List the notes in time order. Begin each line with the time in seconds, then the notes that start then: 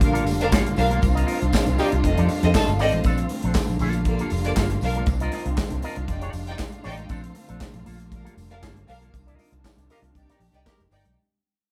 Already playing: A#1 D3 G3 A3 A#3 F4
0.01 D4 A#4 F5, kick, closed hi-hat, muted conga
0.13 A#3 F4 A4, closed hi-hat
0.25 F1, muted clean electric guitar stroke, open hi-hat, tambourine, muted conga
0.40 D4 A#4 F5, muted clean electric guitar stroke, closed hi-hat
0.52 G1 A#3 F4 A4, kick, snare, clap, tambourine, high conga
0.65 muted clean electric guitar stroke, closed hi-hat
0.76 B1 D4 A#4 F5, muted clean electric guitar stroke, open hi-hat, tambourine
0.90 A#3 F4 A4, closed hi-hat, high conga
1.02 C2 D#3 C4 D4, muted clean electric guitar stroke, kick, closed hi-hat, tambourine, muted conga
1.15 F4 A#4 D#5, closed hi-hat
1.27 F4 A#4 D#5, open hi-hat, tambourine, muted conga
1.41 C2, muted clean electric guitar stroke, closed hi-hat
1.53 kick, snare, clap, tambourine, high conga
1.66 C2, muted clean electric guitar stroke, closed hi-hat
1.78 G3 D#4 F4 G4 A#4 D#5, open hi-hat, tambourine, low conga
1.92 C2, muted clean electric guitar stroke, closed hi-hat
2.03 F1 G3 A3 C4 A4 D#5, muted clean electric guitar stroke, kick, closed hi-hat, muted conga
2.17 F2 D#4 A4 D5, closed hi-hat
2.29 muted clean electric guitar stroke, open hi-hat, tambourine
2.43 F2 C4 A4 D#5, muted clean electric guitar stroke, closed hi-hat
2.54 A3 D#4 A4, muted clean electric guitar stroke, kick, snare, clap, tambourine, high conga
2.67 G1, muted clean electric guitar stroke, closed hi-hat
2.79 G#1 C4 D#4 A4 D5 D#5, open hi-hat, tambourine
2.92 A1, muted clean electric guitar stroke, closed hi-hat, high conga
3.03 A#1 D3 A#3 C4 D4 A4, kick, closed hi-hat, tambourine, muted conga
3.18 muted clean electric guitar stroke, closed hi-hat
3.29 muted clean electric guitar stroke, open hi-hat, muted conga
3.42 A#1 C4 D4 A4, closed hi-hat
3.55 muted clean electric guitar stroke, kick, snare, clap, tambourine, high conga
3.67 A#1, muted clean electric guitar stroke, closed hi-hat
3.79 A#1 G3 A#3 F4 A4, open hi-hat, tambourine
3.93 muted clean electric guitar stroke, closed hi-hat
4.05 A#3 A4 D5, muted clean electric guitar stroke, kick, closed hi-hat, muted conga
4.19 A#3 F4 A4, closed hi-hat
4.30 F1, muted clean electric guitar stroke, open hi-hat, tambourine, muted conga
4.45 A#3 A4 D5, muted clean electric guitar stroke, closed hi-hat
4.56 G1 A#3 F4 A4, kick, snare, clap, tambourine, high conga
4.70 muted clean electric guitar stroke, closed hi-hat
4.81 B1 D4 A#4 F5, muted clean electric guitar stroke, open hi-hat, tambourine
4.95 A#3 F4 A4, closed hi-hat, high conga
5.06 C2 D#3 C4 D4 F4, muted clean electric guitar stroke, kick, closed hi-hat, tambourine, muted conga
5.20 F4 A#4 D#5, closed hi-hat
5.32 F4 A#4 D#5, open hi-hat, muted conga
5.46 C2, muted clean electric guitar stroke, closed hi-hat
5.57 kick, snare, clap, tambourine, high conga
5.70 C2, muted clean electric guitar stroke, closed hi-hat
5.82 F4 A#4 D#5, open hi-hat, tambourine, low conga
5.96 C2, muted clean electric guitar stroke, closed hi-hat
6.07 F1 G3 A3 D#4 D5 G5, muted clean electric guitar stroke, kick, closed hi-hat, tambourine, muted conga
6.21 D#4 A4 D5, closed hi-hat
6.33 F1, muted clean electric guitar stroke, open hi-hat, tambourine, muted conga
6.46 D#4 D5 G5, muted clean electric guitar stroke, closed hi-hat
6.58 muted clean electric guitar stroke, kick, snare, clap, tambourine, high conga
6.71 muted clean electric guitar stroke, closed hi-hat
6.83 A1 D#4 A4 D5 G5, open hi-hat, tambourine
6.97 muted clean electric guitar stroke, closed hi-hat, high conga
7.09 A#1 D3 A#3 C4 D4 A4, kick, closed hi-hat, tambourine, muted conga
7.22 muted clean electric guitar stroke, closed hi-hat
7.35 muted clean electric guitar stroke, open hi-hat, muted conga
7.48 A#1 C4 D4 A4, closed hi-hat
7.61 muted clean electric guitar stroke, kick, snare, clap, tambourine, high conga
7.74 A#1, muted clean electric guitar stroke, closed hi-hat
7.85 A#1 D3 G3 A#3 F4 A4, open hi-hat, tambourine
8.00 muted clean electric guitar stroke, closed hi-hat
8.11 D4 A#4 F5, muted clean electric guitar stroke, kick, closed hi-hat, tambourine, muted conga
8.24 A#3 F4 A4, closed hi-hat
8.35 F1, muted clean electric guitar stroke, open hi-hat, tambourine, muted conga
8.49 D4 A#4 F5, muted clean electric guitar stroke, closed hi-hat
8.62 G1 A#3 F4 A4, kick, snare, clap, tambourine, high conga
8.75 muted clean electric guitar stroke, closed hi-hat
8.87 B1 D4 A#4 F5, muted clean electric guitar stroke, open hi-hat, tambourine
9.01 A#3 F4 A4, closed hi-hat, high conga
9.12 C2 C3 D#3 D4, muted clean electric guitar stroke, kick, closed hi-hat, tambourine, muted conga
9.27 F4 A#4 D#5, closed hi-hat
9.39 F4 A#4 D#5, open hi-hat, tambourine, muted conga
9.52 C2, muted clean electric guitar stroke, closed hi-hat
9.64 kick, snare, clap, tambourine, high conga
9.77 C2, muted clean electric guitar stroke, closed hi-hat
9.89 F4 G4 A#4 D#5, open hi-hat, tambourine, low conga
10.02 C2, muted clean electric guitar stroke, closed hi-hat
10.14 C2 D#4 G4 D5 G5, muted clean electric guitar stroke, kick, closed hi-hat, tambourine, muted conga
10.29 D#4 A#4 D5, snare, closed hi-hat
10.40 A#1, muted clean electric guitar stroke, open hi-hat, tambourine
10.53 C2 D#4 D5 G5, muted clean electric guitar stroke, closed hi-hat
10.65 D#4 G4 A#4, muted clean electric guitar stroke, kick, snare, clap, tambourine, high conga
10.79 F1, muted clean electric guitar stroke, closed hi-hat
10.91 G1 D#4 A#4 D5 G5, open hi-hat, tambourine
11.05 B1, muted clean electric guitar stroke, closed hi-hat, high conga